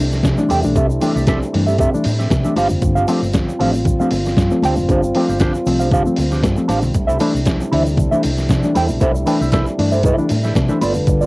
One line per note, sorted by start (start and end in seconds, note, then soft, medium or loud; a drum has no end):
0.00 0.20 C2 medium
0.00 2.53 C3 medium
0.00 11.26 G3 medium
0.00 2.53 A3 medium
0.00 2.53 D4 medium
0.00 2.53 E4 medium
0.11 muted clean electric guitar stroke soft
0.11 snare soft
0.11 shaker soft
0.23 0.35 C3 medium
0.23 kick loud
0.23 snare loud
0.23 closed hi-hat medium
0.23 high conga medium
0.23 shaker medium
0.37 0.50 E3 medium
0.37 0.50 A3 medium
0.37 0.50 D4 medium
0.37 muted clean electric guitar stroke soft
0.37 shaker medium
0.49 0.62 E2 medium
0.49 0.64 C3 medium
0.49 0.63 C4 medium
0.49 0.63 G4 medium
0.49 0.62 A4 loud
0.49 0.63 G5 medium
0.49 open hi-hat medium
0.49 high conga medium
0.49 shaker medium
0.63 0.76 B1 medium
0.63 0.76 E3 medium
0.63 0.76 A3 medium
0.63 0.76 D4 medium
0.63 muted clean electric guitar stroke medium
0.63 high conga medium
0.63 shaker medium
0.75 0.97 C2 loud
0.75 0.89 C3 medium
0.75 0.89 C4 medium
0.75 0.89 G4 medium
0.75 0.89 A4 medium
0.75 0.88 E5 loud
0.75 kick loud
0.75 closed hi-hat medium
0.75 muted conga soft
0.75 shaker medium
0.89 muted clean electric guitar stroke medium
0.89 shaker medium
1.00 1.16 E3 medium
1.00 1.16 A3 medium
1.00 1.12 C4 medium
1.00 1.16 D4 loud
1.00 1.12 G4 medium
1.00 1.12 A4 medium
1.00 1.13 G5 medium
1.00 open hi-hat medium
1.00 muted conga soft
1.00 shaker medium
1.15 1.37 C2 medium
1.15 1.21 A3 soft
1.15 1.25 C4 medium
1.15 1.21 D4 soft
1.15 1.25 G4 medium
1.15 1.25 A4 medium
1.15 1.24 E5 medium
1.15 shaker medium
1.27 1.42 C3 soft
1.27 1.41 C4 medium
1.27 1.41 G4 loud
1.27 1.41 A4 medium
1.27 1.39 E5 loud
1.27 kick loud
1.27 snare loud
1.27 closed hi-hat medium
1.27 high conga medium
1.27 shaker medium
1.41 muted clean electric guitar stroke soft
1.41 shaker medium
1.53 1.86 G2 medium
1.53 1.68 E3 medium
1.53 1.67 A3 medium
1.53 1.67 D4 medium
1.53 muted clean electric guitar stroke soft
1.53 open hi-hat medium
1.66 1.72 A3 soft
1.66 1.77 C4 medium
1.66 1.72 D4 soft
1.66 1.77 G4 medium
1.66 1.77 A4 medium
1.66 1.76 E5 medium
1.66 shaker medium
1.78 1.93 C3 medium
1.78 1.92 C4 medium
1.78 1.93 G4 medium
1.78 1.92 A4 medium
1.78 1.91 E5 medium
1.78 kick loud
1.78 closed hi-hat soft
1.78 muted conga medium
1.78 shaker medium
1.92 2.06 E3 medium
1.92 2.05 A3 medium
1.92 2.05 D4 medium
1.92 muted clean electric guitar stroke soft
1.92 shaker medium
2.04 2.27 A2 loud
2.04 2.11 A3 soft
2.04 2.11 D4 soft
2.04 muted clean electric guitar stroke soft
2.04 open hi-hat medium
2.04 muted conga medium
2.04 shaker soft
2.19 2.29 C4 soft
2.19 2.29 G4 soft
2.19 2.29 A4 medium
2.19 2.28 E5 medium
2.19 snare soft
2.19 shaker soft
2.30 2.42 C3 loud
2.30 kick loud
2.30 snare loud
2.30 closed hi-hat medium
2.30 high conga medium
2.30 shaker medium
2.44 2.57 E3 medium
2.44 2.57 A3 medium
2.44 2.55 C4 soft
2.44 2.57 D4 medium
2.44 2.55 G4 medium
2.44 2.54 A4 medium
2.44 2.54 E5 medium
2.44 shaker medium
2.56 2.68 G1 medium
2.56 6.92 C4 medium
2.56 2.70 D4 medium
2.56 6.91 F4 medium
2.56 2.71 G4 medium
2.56 2.70 C5 medium
2.56 2.69 F5 loud
2.56 open hi-hat medium
2.56 high conga medium
2.56 shaker medium
2.69 2.81 F1 medium
2.69 2.82 G2 medium
2.69 2.83 D3 medium
2.69 muted clean electric guitar stroke soft
2.69 high conga medium
2.69 shaker medium
2.82 3.04 G1 medium
2.82 2.97 G2 medium
2.82 2.97 D3 medium
2.82 muted clean electric guitar stroke soft
2.82 kick loud
2.82 closed hi-hat medium
2.82 muted conga medium
2.82 shaker medium
2.95 3.07 D4 medium
2.95 3.08 G4 medium
2.95 3.08 C5 medium
2.95 3.08 F5 medium
2.95 shaker medium
3.08 3.22 F3 medium
3.08 3.21 A3 medium
3.08 3.21 C4 loud
3.08 3.19 D4 medium
3.08 3.19 G4 medium
3.08 3.19 C5 medium
3.08 3.20 F5 medium
3.08 open hi-hat medium
3.08 muted conga soft
3.08 shaker medium
3.22 3.43 G1 medium
3.22 3.27 A3 soft
3.22 3.27 C4 soft
3.22 shaker soft
3.33 3.48 G2 medium
3.33 3.48 D3 medium
3.33 muted clean electric guitar stroke soft
3.33 kick loud
3.33 snare loud
3.33 closed hi-hat medium
3.33 high conga medium
3.33 shaker medium
3.47 muted clean electric guitar stroke soft
3.47 shaker medium
3.59 3.92 A1 medium
3.59 3.74 F3 medium
3.59 3.73 A3 medium
3.59 3.73 C4 medium
3.59 3.73 D4 medium
3.59 3.74 G4 medium
3.59 3.73 C5 medium
3.59 3.72 F5 medium
3.59 open hi-hat medium
3.59 low conga medium
3.73 3.79 A3 soft
3.73 3.79 C4 soft
3.73 muted clean electric guitar stroke soft
3.73 shaker medium
3.85 4.00 G2 medium
3.85 4.00 D3 medium
3.85 muted clean electric guitar stroke soft
3.85 kick loud
3.85 closed hi-hat medium
3.85 muted conga soft
3.85 low conga medium
3.85 shaker medium
4.00 4.12 F3 medium
4.00 4.11 A3 medium
4.00 4.12 C4 medium
4.00 4.11 D4 medium
4.00 4.12 G4 medium
4.00 4.12 C5 medium
4.00 4.12 F5 medium
4.00 shaker medium
4.11 4.33 G1 loud
4.11 4.17 A3 soft
4.11 4.18 C4 medium
4.11 muted clean electric guitar stroke soft
4.11 open hi-hat medium
4.11 muted conga soft
4.11 shaker soft
4.25 muted clean electric guitar stroke soft
4.25 snare soft
4.25 shaker soft
4.37 4.49 G2 loud
4.37 kick loud
4.37 snare loud
4.37 closed hi-hat medium
4.37 high conga medium
4.37 shaker medium
4.51 4.63 F3 medium
4.51 4.63 A3 medium
4.51 4.64 C4 medium
4.51 muted clean electric guitar stroke soft
4.51 shaker medium
4.62 4.74 D2 medium
4.62 4.77 D4 medium
4.62 4.77 G4 medium
4.62 4.77 C5 medium
4.62 4.77 G5 loud
4.62 open hi-hat medium
4.62 high conga medium
4.62 shaker medium
4.76 4.87 F1 medium
4.76 4.88 G2 medium
4.76 4.88 D3 medium
4.76 muted clean electric guitar stroke soft
4.76 high conga medium
4.76 shaker medium
4.89 5.10 G1 medium
4.89 5.03 G2 medium
4.89 5.03 D3 medium
4.89 5.03 D4 medium
4.89 5.03 G4 medium
4.89 5.03 C5 medium
4.89 5.02 F5 medium
4.89 kick loud
4.89 closed hi-hat medium
4.89 muted conga medium
4.89 shaker medium
5.03 muted clean electric guitar stroke soft
5.03 shaker medium
5.15 5.29 F3 medium
5.15 5.27 A3 medium
5.15 5.28 C4 medium
5.15 5.26 D4 medium
5.15 5.26 G4 medium
5.15 5.26 C5 medium
5.15 5.26 G5 medium
5.15 open hi-hat medium
5.15 muted conga soft
5.28 5.50 G1 medium
5.28 5.33 A3 soft
5.28 5.33 C4 soft
5.28 5.39 D4 soft
5.28 5.39 G4 medium
5.28 5.38 C5 medium
5.28 5.38 F5 medium
5.28 shaker medium
5.39 5.54 G2 medium
5.39 5.55 D3 soft
5.39 5.54 D4 medium
5.39 5.54 G4 medium
5.39 5.54 C5 medium
5.39 5.53 F5 medium
5.39 kick loud
5.39 snare loud
5.39 closed hi-hat medium
5.39 high conga medium
5.39 shaker medium
5.54 muted clean electric guitar stroke soft
5.54 shaker medium
5.66 5.99 C2 medium
5.66 5.80 F3 medium
5.66 5.79 A3 medium
5.66 5.79 C4 medium
5.66 muted clean electric guitar stroke soft
5.66 open hi-hat medium
5.66 shaker medium
5.79 5.85 A3 soft
5.79 5.85 C4 soft
5.79 5.90 D4 medium
5.79 5.90 G4 soft
5.79 5.90 C5 medium
5.79 5.89 F5 medium
5.79 shaker medium
5.91 6.06 G2 medium
5.91 6.07 D3 medium
5.91 6.06 D4 medium
5.91 6.05 G4 medium
5.91 6.05 C5 medium
5.91 6.04 F5 medium
5.91 kick loud
5.91 closed hi-hat soft
5.91 muted conga medium
5.91 shaker medium
6.05 6.18 F3 medium
6.05 6.17 A3 medium
6.05 6.17 C4 medium
6.05 muted clean electric guitar stroke soft
6.05 shaker medium
6.16 6.39 D2 loud
6.16 6.24 A3 soft
6.16 6.24 C4 soft
6.16 muted clean electric guitar stroke soft
6.16 open hi-hat medium
6.16 muted conga soft
6.16 shaker soft
6.31 6.42 D4 soft
6.31 6.41 G4 medium
6.31 6.41 C5 medium
6.31 6.41 F5 medium
6.31 snare soft
6.31 shaker soft
6.43 6.54 G2 loud
6.43 kick loud
6.43 snare loud
6.43 closed hi-hat medium
6.43 high conga medium
6.43 shaker medium
6.56 6.70 F3 medium
6.56 6.70 A3 medium
6.56 6.70 C4 medium
6.56 muted clean electric guitar stroke soft
6.56 shaker medium
6.68 6.83 A1 medium
6.68 6.82 D4 medium
6.68 6.82 G4 medium
6.68 6.81 C5 medium
6.68 6.81 F5 medium
6.68 open hi-hat medium
6.68 high conga medium
6.68 shaker medium
6.82 6.93 B1 medium
6.82 6.95 G2 medium
6.82 6.95 D3 medium
6.82 muted clean electric guitar stroke soft
6.82 high conga soft
6.82 shaker medium
6.94 7.16 C2 medium
6.94 10.78 C3 medium
6.94 7.09 C3 medium
6.94 10.78 A3 medium
6.94 11.26 D4 medium
6.94 10.78 E4 medium
6.94 muted clean electric guitar stroke soft
6.94 kick loud
6.94 closed hi-hat medium
6.94 muted conga medium
6.94 shaker medium
7.07 7.19 E4 medium
7.07 7.19 A4 medium
7.07 7.20 C5 medium
7.07 7.20 E5 medium
7.07 shaker medium
7.20 7.34 E3 medium
7.20 7.33 A3 medium
7.20 7.33 D4 loud
7.20 7.31 E4 medium
7.20 7.31 A4 medium
7.20 7.32 C5 medium
7.20 7.32 E5 medium
7.20 open hi-hat medium
7.20 muted conga soft
7.20 shaker medium
7.34 7.56 C2 medium
7.34 7.39 A3 soft
7.34 7.39 D4 soft
7.34 shaker medium
7.46 7.60 C3 medium
7.46 muted clean electric guitar stroke soft
7.46 kick loud
7.46 snare loud
7.46 closed hi-hat medium
7.46 high conga medium
7.46 shaker medium
7.60 muted clean electric guitar stroke soft
7.60 shaker medium
7.72 8.05 D2 medium
7.72 7.86 E3 medium
7.72 7.85 A3 medium
7.72 7.85 D4 medium
7.72 7.86 E4 medium
7.72 7.86 A4 medium
7.72 7.85 C5 medium
7.72 7.84 E5 medium
7.72 open hi-hat medium
7.72 low conga medium
7.85 7.91 A3 soft
7.85 7.91 D4 soft
7.85 muted clean electric guitar stroke soft
7.85 shaker medium
7.97 8.12 C3 medium
7.97 muted clean electric guitar stroke soft
7.97 kick loud
7.97 closed hi-hat medium
7.97 muted conga medium
7.97 low conga medium
7.97 shaker medium
8.11 8.24 E3 medium
8.11 8.23 A3 medium
8.11 8.23 D4 medium
8.11 8.22 E4 medium
8.11 8.23 A4 medium
8.11 8.23 C5 medium
8.11 8.24 E5 medium
8.11 shaker medium
8.23 8.46 C2 medium
8.23 8.30 A3 soft
8.23 8.30 D4 soft
8.23 open hi-hat medium
8.23 muted conga soft
8.23 shaker soft
8.37 muted clean electric guitar stroke soft
8.37 snare soft
8.37 shaker soft
8.49 8.61 C3 loud
8.49 kick loud
8.49 snare loud
8.49 closed hi-hat medium
8.49 high conga medium
8.49 shaker medium
8.63 8.76 E3 medium
8.63 8.76 A3 medium
8.63 8.76 D4 medium
8.63 muted clean electric guitar stroke soft
8.63 shaker medium
8.75 8.87 E2 medium
8.75 8.89 E4 medium
8.75 8.89 A4 medium
8.75 8.88 C5 medium
8.75 8.89 G5 medium
8.75 open hi-hat medium
8.75 high conga medium
8.75 shaker medium
8.88 9.00 B1 medium
8.88 9.01 C3 medium
8.88 muted clean electric guitar stroke soft
8.88 high conga medium
8.88 shaker medium
9.00 9.23 C2 loud
9.00 9.15 C3 medium
9.00 9.15 E4 medium
9.00 9.15 A4 loud
9.00 9.14 C5 medium
9.00 9.13 E5 loud
9.00 kick loud
9.00 closed hi-hat medium
9.00 muted conga soft
9.00 shaker medium
9.14 muted clean electric guitar stroke medium
9.14 shaker medium
9.26 9.40 E3 medium
9.26 9.39 A3 medium
9.26 9.40 D4 loud
9.26 9.37 E4 medium
9.26 9.38 A4 medium
9.26 9.38 C5 medium
9.26 9.38 G5 medium
9.26 open hi-hat medium
9.26 shaker medium
9.40 9.62 C2 medium
9.40 9.45 A3 soft
9.40 9.46 D4 soft
9.40 9.51 E4 medium
9.40 9.51 A4 medium
9.40 9.50 C5 medium
9.40 9.50 E5 medium
9.40 shaker medium
9.52 9.67 C3 medium
9.52 9.66 E4 medium
9.52 9.66 A4 medium
9.52 9.66 C5 medium
9.52 9.65 E5 medium
9.52 kick loud
9.52 snare loud
9.52 closed hi-hat medium
9.52 high conga medium
9.52 shaker medium
9.66 muted clean electric guitar stroke soft
9.66 shaker medium
9.78 10.11 G2 medium
9.78 9.92 E3 medium
9.78 9.91 A3 medium
9.78 9.91 D4 medium
9.78 muted clean electric guitar stroke soft
9.78 open hi-hat medium
9.92 9.97 A3 soft
9.92 9.97 D4 soft
9.92 10.02 E4 medium
9.92 10.02 A4 medium
9.92 10.02 C5 medium
9.92 10.02 E5 medium
9.92 shaker medium
10.03 10.18 C3 medium
10.03 10.24 E4 medium
10.03 10.18 A4 medium
10.03 10.18 C5 medium
10.03 10.17 E5 medium
10.03 kick loud
10.03 closed hi-hat soft
10.03 muted conga medium
10.03 shaker medium
10.17 10.30 E3 medium
10.17 10.29 A3 medium
10.17 10.29 D4 medium
10.17 muted clean electric guitar stroke soft
10.17 shaker soft
10.29 10.52 A2 medium
10.29 10.35 A3 soft
10.29 10.36 D4 soft
10.29 muted clean electric guitar stroke soft
10.29 open hi-hat medium
10.29 muted conga soft
10.29 shaker soft
10.43 10.54 E4 soft
10.43 10.54 A4 medium
10.43 10.53 C5 medium
10.43 10.53 E5 medium
10.43 snare soft
10.43 shaker soft
10.55 10.67 C3 loud
10.55 kick loud
10.55 snare loud
10.55 closed hi-hat medium
10.55 high conga medium
10.55 shaker medium
10.68 10.81 E3 medium
10.68 10.81 A3 medium
10.68 10.82 D4 medium
10.68 10.80 E4 medium
10.68 10.79 A4 medium
10.68 10.79 C5 medium
10.68 10.79 E5 medium
10.68 shaker medium
10.81 10.95 G1 medium
10.81 10.95 B3 medium
10.81 11.26 F4 medium
10.81 10.96 F4 medium
10.81 11.26 A4 medium
10.81 10.95 A4 medium
10.81 11.26 B4 medium
10.81 10.94 D5 medium
10.81 open hi-hat medium
10.81 high conga medium
10.81 shaker medium
10.94 11.05 F1 medium
10.94 11.06 G2 medium
10.94 11.07 D3 medium
10.94 muted clean electric guitar stroke soft
10.94 high conga soft
10.94 shaker medium
11.07 11.26 G1 loud
11.07 11.21 G2 medium
11.07 11.21 D3 medium
11.07 muted clean electric guitar stroke soft
11.07 kick loud
11.07 closed hi-hat medium
11.07 muted conga medium
11.07 shaker medium
11.21 11.26 B3 medium
11.21 11.26 F4 medium
11.21 11.26 A4 medium
11.21 11.26 D5 medium
11.21 shaker medium